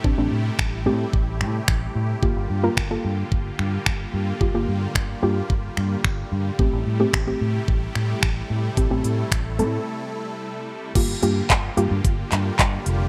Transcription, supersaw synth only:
0.00 2.19 C3 medium
0.00 2.19 G3 medium
0.00 2.19 A3 medium
0.00 2.19 E4 medium
0.00 6.55 G4 medium
2.23 6.55 D3 medium
2.23 10.91 G3 medium
2.23 6.55 A#3 medium
2.23 6.55 F4 medium
6.59 10.91 C3 medium
6.59 10.91 A3 medium
6.59 10.92 E4 medium
8.77 10.93 A4 medium
10.95 13.09 D3 medium
10.95 13.09 G3 medium
10.95 13.09 A#3 medium
10.95 13.09 F4 medium
10.95 13.09 G4 medium

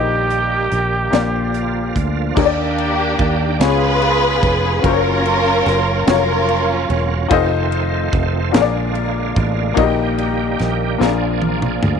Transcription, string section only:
2.38 3.58 A#3 medium
2.38 3.58 D4 medium
2.38 3.57 G4 medium
3.63 4.82 F4 medium
3.63 4.82 G#4 medium
3.63 4.86 B4 loud
4.86 6.05 C#4 medium
4.86 6.05 F4 medium
4.86 6.08 A#4 loud
6.09 7.28 C#4 medium
6.09 7.28 F4 medium
6.09 6.97 A#4 loud

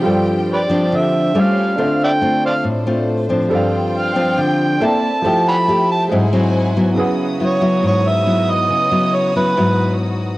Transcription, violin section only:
0.00 1.31 G4 medium
0.00 1.74 G5 medium
0.05 1.34 C5 medium
1.35 1.78 C#4 medium
1.35 1.78 A4 medium
1.35 1.78 F5 medium
1.77 3.49 D4 medium
1.77 5.20 C5 medium
3.50 4.79 F4 medium
3.50 4.79 G5 medium
4.80 5.23 E4 medium
4.80 5.23 D5 medium
4.80 6.09 A5 medium
5.24 6.09 E5 medium
5.24 6.10 G5 medium
6.11 6.96 E4 medium
6.11 6.97 C5 medium
6.11 6.97 F#5 medium
6.11 6.96 G#5 medium
6.97 10.38 B3 medium
6.97 10.38 E4 medium
6.97 10.38 F#4 medium
6.97 10.38 C#5 medium
6.97 10.38 D#6 medium

